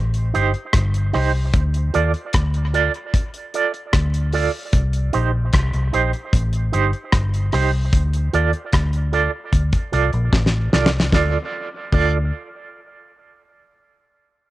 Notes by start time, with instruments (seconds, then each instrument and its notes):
Already playing: fingered electric bass A1
0.14 closed hi-hat
0.34 fingered electric bass G1, clean electric guitar D#4 G4 C5, closed hi-hat
0.54 closed hi-hat
0.73 fingered electric bass G1, kick, cross-stick, closed hi-hat
0.94 closed hi-hat
1.13 fingered electric bass C2, clean electric guitar D#4 G4 C5, cross-stick, open hi-hat
1.53 fingered electric bass D2, kick, closed hi-hat
1.74 closed hi-hat
1.94 fingered electric bass D#2, clean electric guitar F4 A4 D5, closed hi-hat
2.14 closed hi-hat
2.33 fingered electric bass D2, kick, cross-stick, closed hi-hat
2.54 closed hi-hat
2.74 clean electric guitar F4 A4 D5, closed hi-hat
2.94 closed hi-hat
3.14 kick, closed hi-hat
3.34 closed hi-hat
3.54 clean electric guitar F4 A4 D5, closed hi-hat
3.73 muted clean electric guitar stroke, closed hi-hat
3.93 fingered electric bass D2, kick, cross-stick, closed hi-hat
4.14 closed hi-hat
4.33 clean electric guitar F4 A4 D5, open hi-hat
4.73 fingered electric bass C2, kick, closed hi-hat
4.93 closed hi-hat
5.13 fingered electric bass A#1, clean electric guitar D#4 G4 C5, closed hi-hat
5.53 fingered electric bass C2, kick, cross-stick, closed hi-hat
5.73 fingered electric bass C2, closed hi-hat
5.93 fingered electric bass A#1, clean electric guitar D#4 G4 C5, closed hi-hat
6.13 closed hi-hat
6.33 fingered electric bass A1, kick, closed hi-hat
6.53 closed hi-hat
6.72 fingered electric bass G1, clean electric guitar D#4 G4 C5, closed hi-hat
6.93 closed hi-hat
7.12 fingered electric bass G1, kick, cross-stick, closed hi-hat
7.34 closed hi-hat
7.52 fingered electric bass C2, clean electric guitar D#4 G4 C5, cross-stick, open hi-hat
7.93 fingered electric bass D2, kick, closed hi-hat
8.13 closed hi-hat
8.33 fingered electric bass D#2, clean electric guitar F4 A4 D5, closed hi-hat
8.53 closed hi-hat
8.72 fingered electric bass D2, kick, cross-stick, closed hi-hat
8.93 closed hi-hat
9.12 clean electric guitar F4 A4 D5, closed hi-hat
9.53 fingered electric bass D2, kick, closed hi-hat
9.72 kick, closed hi-hat
9.92 fingered electric bass C2, clean electric guitar F4 A4 D5, closed hi-hat
10.12 fingered electric bass A#1, muted clean electric guitar stroke, closed hi-hat
10.33 fingered electric bass A1, kick, snare
10.46 snare
10.73 fingered electric bass C2, clean electric guitar F4 A4 D5, snare
10.86 snare
11.00 snare
11.12 fingered electric bass D2, clean electric guitar F4 A4 D5, kick, snare
11.92 fingered electric bass D2, clean electric guitar F4 A4 D5, kick, crash